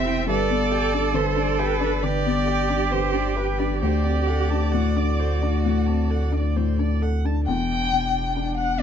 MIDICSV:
0, 0, Header, 1, 6, 480
1, 0, Start_track
1, 0, Tempo, 879765
1, 155, Time_signature, 4, 2, 24, 8
1, 1594, Tempo, 909091
1, 3994, Tempo, 886263
1, 4730, End_track
2, 0, Start_track
2, 0, Title_t, "Viola"
2, 0, Program_c, 0, 41
2, 39, Note_on_c, 0, 79, 73
2, 158, Note_off_c, 0, 79, 0
2, 161, Note_on_c, 0, 71, 82
2, 278, Note_on_c, 0, 74, 75
2, 287, Note_off_c, 0, 71, 0
2, 390, Note_on_c, 0, 79, 76
2, 398, Note_off_c, 0, 74, 0
2, 510, Note_on_c, 0, 74, 79
2, 518, Note_off_c, 0, 79, 0
2, 629, Note_on_c, 0, 71, 78
2, 637, Note_off_c, 0, 74, 0
2, 750, Note_on_c, 0, 74, 87
2, 758, Note_off_c, 0, 71, 0
2, 867, Note_on_c, 0, 79, 79
2, 876, Note_off_c, 0, 74, 0
2, 980, Note_on_c, 0, 74, 71
2, 989, Note_off_c, 0, 79, 0
2, 1105, Note_off_c, 0, 74, 0
2, 1109, Note_on_c, 0, 71, 79
2, 1226, Note_on_c, 0, 74, 78
2, 1234, Note_off_c, 0, 71, 0
2, 1353, Note_on_c, 0, 79, 79
2, 1361, Note_off_c, 0, 74, 0
2, 1467, Note_on_c, 0, 74, 72
2, 1475, Note_off_c, 0, 79, 0
2, 1584, Note_on_c, 0, 71, 69
2, 1592, Note_off_c, 0, 74, 0
2, 1703, Note_on_c, 0, 74, 68
2, 1711, Note_off_c, 0, 71, 0
2, 1823, Note_on_c, 0, 79, 65
2, 1831, Note_off_c, 0, 74, 0
2, 1945, Note_on_c, 0, 74, 58
2, 1953, Note_off_c, 0, 79, 0
2, 2062, Note_off_c, 0, 74, 0
2, 2065, Note_on_c, 0, 72, 57
2, 2185, Note_on_c, 0, 74, 60
2, 2193, Note_off_c, 0, 72, 0
2, 2303, Note_on_c, 0, 78, 65
2, 2310, Note_off_c, 0, 74, 0
2, 2426, Note_on_c, 0, 81, 55
2, 2434, Note_off_c, 0, 78, 0
2, 2543, Note_on_c, 0, 78, 62
2, 2551, Note_off_c, 0, 81, 0
2, 2673, Note_on_c, 0, 74, 63
2, 2681, Note_off_c, 0, 78, 0
2, 2794, Note_on_c, 0, 72, 58
2, 2802, Note_off_c, 0, 74, 0
2, 2910, Note_on_c, 0, 74, 52
2, 2918, Note_off_c, 0, 72, 0
2, 3029, Note_off_c, 0, 74, 0
2, 3033, Note_on_c, 0, 78, 50
2, 3148, Note_on_c, 0, 81, 54
2, 3156, Note_off_c, 0, 78, 0
2, 3275, Note_on_c, 0, 78, 55
2, 3283, Note_off_c, 0, 81, 0
2, 3395, Note_on_c, 0, 74, 56
2, 3403, Note_off_c, 0, 78, 0
2, 3514, Note_on_c, 0, 72, 53
2, 3522, Note_off_c, 0, 74, 0
2, 3638, Note_on_c, 0, 74, 60
2, 3646, Note_off_c, 0, 72, 0
2, 3758, Note_on_c, 0, 78, 59
2, 3766, Note_off_c, 0, 74, 0
2, 3882, Note_on_c, 0, 81, 53
2, 3890, Note_off_c, 0, 78, 0
2, 3994, Note_off_c, 0, 81, 0
2, 3997, Note_on_c, 0, 62, 62
2, 4730, Note_off_c, 0, 62, 0
2, 4730, End_track
3, 0, Start_track
3, 0, Title_t, "Violin"
3, 0, Program_c, 1, 40
3, 0, Note_on_c, 1, 76, 91
3, 156, Note_off_c, 1, 76, 0
3, 166, Note_on_c, 1, 74, 104
3, 627, Note_on_c, 1, 72, 88
3, 635, Note_off_c, 1, 74, 0
3, 868, Note_on_c, 1, 71, 90
3, 876, Note_off_c, 1, 72, 0
3, 1107, Note_on_c, 1, 74, 94
3, 1115, Note_off_c, 1, 71, 0
3, 1591, Note_on_c, 1, 72, 81
3, 1599, Note_off_c, 1, 74, 0
3, 1832, Note_on_c, 1, 71, 67
3, 1840, Note_off_c, 1, 72, 0
3, 2062, Note_off_c, 1, 71, 0
3, 2066, Note_on_c, 1, 74, 77
3, 3732, Note_off_c, 1, 74, 0
3, 3994, Note_on_c, 1, 79, 102
3, 4574, Note_off_c, 1, 79, 0
3, 4593, Note_on_c, 1, 78, 82
3, 4724, Note_off_c, 1, 78, 0
3, 4730, End_track
4, 0, Start_track
4, 0, Title_t, "Cello"
4, 0, Program_c, 2, 42
4, 0, Note_on_c, 2, 60, 127
4, 147, Note_off_c, 2, 60, 0
4, 150, Note_on_c, 2, 69, 127
4, 1110, Note_on_c, 2, 67, 127
4, 1118, Note_off_c, 2, 69, 0
4, 2063, Note_off_c, 2, 67, 0
4, 2067, Note_on_c, 2, 67, 102
4, 2559, Note_on_c, 2, 66, 79
4, 2567, Note_off_c, 2, 67, 0
4, 3759, Note_off_c, 2, 66, 0
4, 4730, End_track
5, 0, Start_track
5, 0, Title_t, "Felt piano"
5, 0, Program_c, 3, 0
5, 0, Control_c, 3, 64, 127
5, 0, Note_on_c, 3, 40, 70
5, 0, Note_on_c, 3, 48, 72
5, 0, Note_on_c, 3, 64, 75
5, 0, Note_on_c, 3, 67, 79
5, 0, Note_on_c, 3, 71, 67
5, 27, Note_off_c, 3, 64, 0
5, 27, Note_on_c, 3, 64, 70
5, 103, Note_off_c, 3, 67, 0
5, 126, Note_off_c, 3, 40, 0
5, 144, Note_on_c, 3, 43, 91
5, 152, Note_off_c, 3, 64, 0
5, 166, Note_off_c, 3, 71, 0
5, 166, Control_c, 3, 64, 0
5, 170, Note_off_c, 3, 48, 0
5, 267, Control_c, 3, 64, 127
5, 274, Note_on_c, 3, 59, 64
5, 389, Note_on_c, 3, 67, 70
5, 464, Note_off_c, 3, 59, 0
5, 513, Note_on_c, 3, 62, 61
5, 581, Note_off_c, 3, 67, 0
5, 621, Note_on_c, 3, 50, 85
5, 703, Note_off_c, 3, 62, 0
5, 744, Note_on_c, 3, 62, 68
5, 816, Note_off_c, 3, 50, 0
5, 868, Note_on_c, 3, 67, 79
5, 938, Note_off_c, 3, 62, 0
5, 987, Note_on_c, 3, 62, 70
5, 1061, Note_off_c, 3, 67, 0
5, 1082, Note_off_c, 3, 43, 0
5, 1110, Note_on_c, 3, 50, 64
5, 1181, Note_off_c, 3, 62, 0
5, 1233, Note_on_c, 3, 59, 67
5, 1303, Note_off_c, 3, 50, 0
5, 1347, Note_on_c, 3, 67, 61
5, 1426, Note_off_c, 3, 59, 0
5, 1472, Note_on_c, 3, 62, 62
5, 1544, Note_off_c, 3, 67, 0
5, 1594, Note_on_c, 3, 50, 56
5, 1665, Note_off_c, 3, 62, 0
5, 1705, Note_on_c, 3, 62, 64
5, 1784, Note_off_c, 3, 50, 0
5, 1825, Note_on_c, 3, 67, 60
5, 1900, Note_off_c, 3, 62, 0
5, 1951, Note_on_c, 3, 62, 61
5, 2020, Note_off_c, 3, 67, 0
5, 2071, Note_off_c, 3, 62, 0
5, 2072, Note_on_c, 3, 38, 71
5, 2082, Control_c, 3, 64, 0
5, 2183, Control_c, 3, 64, 127
5, 2186, Note_on_c, 3, 60, 54
5, 2314, Note_on_c, 3, 69, 55
5, 2382, Note_off_c, 3, 60, 0
5, 2434, Note_on_c, 3, 62, 53
5, 2506, Note_off_c, 3, 69, 0
5, 2555, Note_on_c, 3, 45, 57
5, 2626, Note_off_c, 3, 62, 0
5, 2672, Note_on_c, 3, 62, 47
5, 2747, Note_off_c, 3, 45, 0
5, 2799, Note_on_c, 3, 69, 46
5, 2865, Note_off_c, 3, 62, 0
5, 2916, Note_on_c, 3, 62, 51
5, 2989, Note_off_c, 3, 69, 0
5, 3013, Note_off_c, 3, 38, 0
5, 3038, Note_on_c, 3, 45, 50
5, 3107, Note_off_c, 3, 62, 0
5, 3152, Note_on_c, 3, 60, 45
5, 3228, Note_off_c, 3, 45, 0
5, 3271, Note_on_c, 3, 69, 53
5, 3345, Note_off_c, 3, 60, 0
5, 3389, Note_on_c, 3, 62, 47
5, 3465, Note_off_c, 3, 69, 0
5, 3519, Note_on_c, 3, 45, 50
5, 3584, Note_off_c, 3, 62, 0
5, 3636, Note_on_c, 3, 62, 46
5, 3710, Note_off_c, 3, 45, 0
5, 3754, Note_on_c, 3, 69, 51
5, 3829, Note_off_c, 3, 62, 0
5, 3879, Note_on_c, 3, 62, 49
5, 3947, Note_off_c, 3, 69, 0
5, 3997, Note_off_c, 3, 62, 0
5, 4000, Note_on_c, 3, 40, 76
5, 4005, Control_c, 3, 64, 0
5, 4112, Control_c, 3, 64, 127
5, 4240, Note_on_c, 3, 47, 45
5, 4481, Note_on_c, 3, 62, 62
5, 4621, Note_off_c, 3, 47, 0
5, 4706, Note_on_c, 3, 59, 48
5, 4730, Note_off_c, 3, 40, 0
5, 4730, Note_off_c, 3, 59, 0
5, 4730, Note_off_c, 3, 62, 0
5, 4730, End_track
6, 0, Start_track
6, 0, Title_t, "Sub bass"
6, 0, Program_c, 4, 38
6, 0, Note_on_c, 4, 28, 68
6, 157, Note_on_c, 4, 31, 81
6, 165, Note_off_c, 4, 28, 0
6, 2074, Note_on_c, 4, 38, 78
6, 2082, Note_off_c, 4, 31, 0
6, 3997, Note_off_c, 4, 38, 0
6, 4002, Note_on_c, 4, 28, 70
6, 4730, Note_off_c, 4, 28, 0
6, 4730, End_track
0, 0, End_of_file